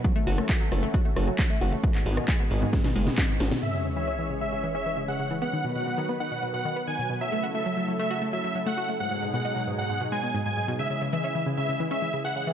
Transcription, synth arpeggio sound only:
\new Staff \with { instrumentName = "Synth arpeggio sound" } { \clef bass \time 4/4 \key cis \minor \tempo 4 = 134 fis16 a16 fis'16 a16 fis16 fis16 fis16 a16 fis'16 a16 fis16 fis16 fis16 a16 fis'16 a16 | gis,16 gis,16 gis,16 b,16 gis16 b,16 gis,16 gis,16 gis,16 b,16 gis16 b,16 gis,16 gis,16 gis,16 b,16 | cis16 cis16 cis16 e16 cis'16 e16 cis16 cis16 cis16 e16 cis'16 e16 cis16 cis16 cis16 e16 | b16 dis16 b,16 b,16 b,16 dis16 b16 dis16 b,16 b,16 b,16 dis16 b16 dis16 b,16 b,16 |
fis16 a16 fis'16 a16 fis16 fis16 fis16 a16 fis'16 a16 fis16 fis16 fis16 a16 fis'16 a16 | gis,16 gis,16 gis,16 b,16 gis16 b,16 gis,16 gis,16 gis,16 b,16 gis16 b,16 gis,16 gis,16 gis,16 b,16 | cis16 cis16 cis16 e16 cis'16 e16 cis16 cis16 cis16 e16 cis'16 e16 cis16 cis16 cis16 e16 | }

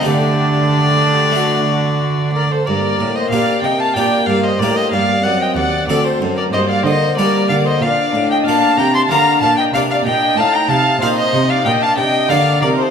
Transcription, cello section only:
\new Staff \with { instrumentName = "Cello section" } { \clef bass \time 4/4 \key g \minor \tempo 4 = 93 d2.~ d8 r8 | g,8 a,8 bes,8 c8 bes,8 g,8 a,8 g,8 | fis,8 ees,8 d,8 fis,8 g,8 d8 g8 d8 | bes,8 a,8 bes,8 c8 d8 bes,8 c8 bes,8 |
a,8 c8 bes,8 c8 bes,8 c8 d8 c8 | }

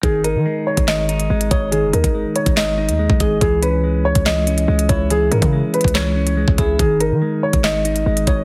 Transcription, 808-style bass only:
\new Staff \with { instrumentName = "808-style bass" } { \clef bass \time 4/4 \key cis \dorian \tempo 4 = 142 gis,,8. dis16 r8. gis,,4~ gis,,16 gis,,8 gis,,8~ | gis,,16 fis,,16 dis,16 gis,,8 r8 gis,,4 dis,8 b,,16 gis,,8 | cis,4.~ cis,16 cis,4~ cis,16 cis,8 cis,8~ | cis,8 gis,16 cis8 r8 cis,4. cis,16 cis,8 |
gis,,8. dis16 r8. gis,,4~ gis,,16 gis,,8 gis,,8 | }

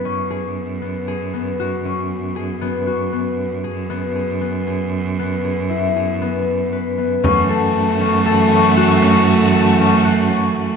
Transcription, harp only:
\new Staff \with { instrumentName = "Harp" } { \time 7/4 \key fis \minor \tempo 4 = 117 cis'8 gis'4 b8 gis'8 b8 fis'8 cis'4 gis'8 b8 fis'8 b4 | gis'8 b8 gis'8 b8 gis'4 b8 gis'8 e'8 gis'8 b4 b'8 b8 | cis'8 a'4 cis'8 a'8 cis'8 fis'8 cis'4 a'8 cis'8 fis'8 cis'4 | }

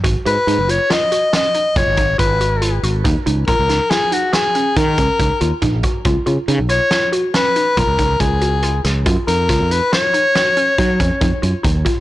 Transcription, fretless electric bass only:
\new Staff \with { instrumentName = "Fretless electric bass" } { \clef bass \time 7/4 \key gis \dorian \tempo 4 = 140 gis,,16 r16 gis,16 r16 gis,16 fis,,8 r2 r16 fis,,16 gis,,8. gis,,4. gis,,8 | dis,16 r16 cis,8 ais,,16 cis,8 r2 r16 dis8 cis,16 r16 cis,16 r16 dis,16 r16 ais,,8 r8 | cis,16 r16 cis16 r16 cis16 b,,8 r2 r16 b,,16 cis,8. cis,4. cis,8 | fis,16 r16 eis,8 cis,16 eis,8 r2 r16 fis8 eis,16 r16 eis,16 r16 fis,16 r16 dis,8 r8 | }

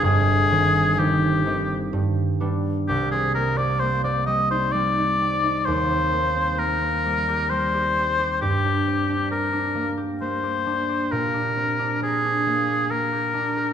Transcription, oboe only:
\new Staff \with { instrumentName = "Oboe" } { \time 3/4 \key c \minor \tempo 4 = 66 aes'4 g'4 r4 | g'16 aes'16 bes'16 d''16 c''16 d''16 ees''16 c''16 d''4 | c''4 bes'4 c''4 | g'4 bes'8. r16 c''4 |
bes'4 aes'4 bes'4 | }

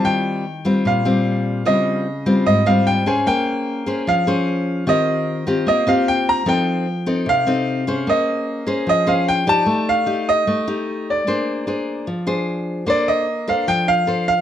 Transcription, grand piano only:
\new Staff \with { instrumentName = "Grand piano" } { \time 4/4 \key ees \mixolydian \tempo 4 = 150 g''2 f''2 | ees''2 ees''8 f''8 g''8 aes''8 | g''2 f''2 | ees''2 ees''8 f''8 g''8 bes''8 |
g''2 f''2 | ees''2 ees''8 f''8 g''8 a''8~ | a''8 f''4 ees''2 d''8~ | d''2. r4 |
\key bes \major d''8 ees''4 f''8 g''8 f''4 f''8 | }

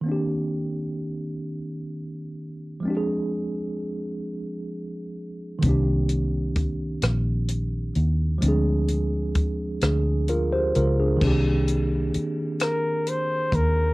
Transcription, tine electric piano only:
\new Staff \with { instrumentName = "Tine electric piano" } { \time 6/8 \key c \minor \tempo 4. = 43 << { r2. | r2. | r2. | r4. <d' aes'>8 <f' bes'>16 <g' c''>16 <f' bes'>16 <d' aes'>16~ |
<d' aes'>16 r2 r8. | } \\ { <ees bes c' d' g'>2. | <f aes c' d' g' aes'>2. | <ees bes c' d' g'>2. | <f aes c' d' aes'>2. |
<ees bes c' d' g'>2. | } >> }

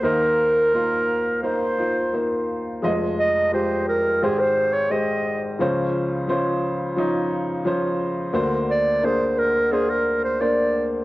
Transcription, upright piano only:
<<
  \new Staff \with { instrumentName = "Upright piano" } { \time 4/4 \key f \minor \tempo 4 = 87 <bes ees' c''>4 <bes ees' f'>4 <bes ees' c''>8 <bes ees' f'>8 <bes ees' c''>4 | <aes f' ees''>4 <aes f' g'>4 <aes g' c''>4 <aes g' c''>4 | <f des' c''>4 <f des' c''>4 <f des' ees'>4 <f des' c''>4 | <bes d' c''>4 <bes d' aes'>4 <bes d' c''>4 <bes d' c''>4 | }
  \new Staff \with { instrumentName = "Upright piano" } { \clef bass \time 4/4 \key f \minor <ees, ees>1 | <f,, f,>2 <aes,, aes,>2 | <des, des>1 | <d, d>1 | }
>>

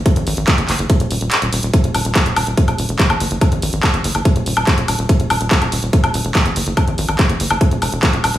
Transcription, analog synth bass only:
\new Staff \with { instrumentName = "Analog synth bass" } { \clef bass \time 4/4 \key ees \phrygian \tempo 4 = 143 r16 aes,,16 aes,,16 aes,,16 r16 ges,,16 ges,,16 ges,,16 r16 ees,,16 ees,,16 ees,,16 r16 ees,,16 ees,,16 ees,,16 | r16 ees,,16 ees,,16 ees,,16 r16 ees,,16 ees,,16 ees,,16 r16 ees,,16 ees,,16 fes,,16 r16 ges,,16 ges,,16 ges,,16 | r16 aes,,16 aes,,16 aes,,16 r16 ges,,16 ges,,16 ges,,16 r16 ees,,16 ees,,16 ees,,16 r16 ees,,16 ees,,16 ees,,16 | r16 ees,,16 ees,,16 ees,,16 r16 ees,,16 ees,,16 ees,,16 r16 ees,,16 ees,,16 fes,,16 r16 ges,,16 ges,,16 ges,,16 |
r16 aes,,16 aes,,16 aes,,16 r16 ges,,16 ges,,16 ges,,16 r16 ees,,16 fes,,16 fes,,16 r16 ees,,16 ees,,16 ees,,16 | }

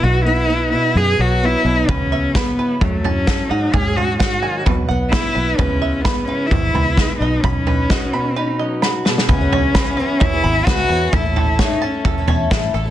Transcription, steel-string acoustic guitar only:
\new Staff \with { instrumentName = "Steel-string acoustic guitar" } { \time 4/4 \key cis \minor \tempo 4 = 130 << { b8 b8 b4 b4 b4~ | b8 b8 b'8 e'8 r8 e'8 a'8 r8 | cis'8 cis'8 cis'4 r8 b8 b8 b8 | <gis b e' b'>8 b8 b'8 e'4 b4. |
dis'8 b'8 fis'4 dis'4 fis'8 r8 | r1 | r1 | } \\ { b,4. b,4 fis4 b,8 | cis2 fis4. gis,8~ | gis,4. dis8 b,2 | cis2 gis,4 gis8 b,8~ |
b,4. b,4 fis4 b,8 | r1 | r1 | } >> }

